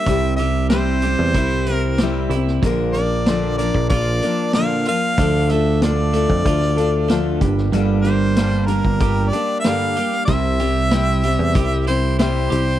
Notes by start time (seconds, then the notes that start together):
Already playing: E5
0.06 C2 C3 G3 C4 E4 G4, kick, closed hi-hat
0.36 G3 G4 E5, closed hi-hat
0.41 C4 E4
0.69 C3 G3 C4 E4 G4 C5, snare, closed hi-hat
1.02 G3 E4 G4, closed hi-hat
1.07 C4
1.19 E2
1.34 C2 G3 C4 E4, kick, closed hi-hat
1.38 G4
1.66 C4 G4, closed hi-hat
1.71 C4 E4 A#4
1.98 C3 G3, snare, closed hi-hat
2.02 G3 C4 E4 G4
2.30 C2 E4, closed hi-hat
2.34 C4 E4 G4
2.47 snare
2.62 A#1 A#2 D3 F3 A#3 D4 A#4, kick, closed hi-hat
2.92 A#3 D5, closed hi-hat
2.97 F3 A#3 D4 A#4
3.26 A#2 D3 F3 A#3 D4 A#4, snare, closed hi-hat
3.58 F3 A#3 D4 A#4 D5, closed hi-hat
3.74 A#1, kick
3.89 A#1 F3 A#3 D4 F4 A#4 D5, kick, closed hi-hat
4.22 F3 A#3 D4 A#4, closed hi-hat
4.53 A#2 D3 F3 A#3 A#4 F5, snare, closed hi-hat
4.57 D4
4.85 F3 D4 F4 A#4 F5, closed hi-hat
4.89 A#3
5.17 D2 D3 F3 D4 F4 A4, kick, closed hi-hat
5.49 A3 F4 A4 E5, closed hi-hat
5.54 D4
5.82 D3 F3 D4 F4 A4 D5, snare, closed hi-hat
6.13 A3 D4 F4 A4, closed hi-hat
6.30 F2, kick
6.45 D2 F3 D4 F4 A4, kick, closed hi-hat
6.62 snare
6.76 D4 F4 A4, closed hi-hat
7.08 D3 F3 A3 D4 F4 A4, snare, closed hi-hat
7.41 G1 G2 G3 A#3 D4 G4, kick, closed hi-hat
7.58 snare
7.72 G1 G2 D3 G3 A#3 D4 G4, closed hi-hat
8.02 A#3 D4 G4 C5, closed hi-hat
8.06 G3
8.36 G2 D3 G3 A#3 D4 G4, snare, closed hi-hat
8.66 G3 A#3 D4 G4 A#4, closed hi-hat
8.85 G1, kick
9.00 G1 G3 A#3 D4 G4, kick, closed hi-hat
9.29 G4 D5
9.33 G3 A#3 D4, closed hi-hat
9.60 F5, closed hi-hat
9.64 G2 D3 G3 A#3 D4 G4, snare
9.97 G3 A#3 D4 G4, closed hi-hat
10.12 snare
10.25 C2 C3 G3 C4 E5, kick, closed hi-hat
10.30 E4 G4
10.60 G3 C4 E4 G4, closed hi-hat
10.91 C3 G3 C4 E4 G4, snare, closed hi-hat
11.23 G3 C4 E4 G4, closed hi-hat
11.39 E2
11.55 C2 G3 C4 E4 G4, kick, closed hi-hat
11.87 C4 E4 G4 C5, closed hi-hat
12.19 C3 G3 C4 E4 G4 C5, snare, closed hi-hat
12.51 C2 C4 E4 G4, closed hi-hat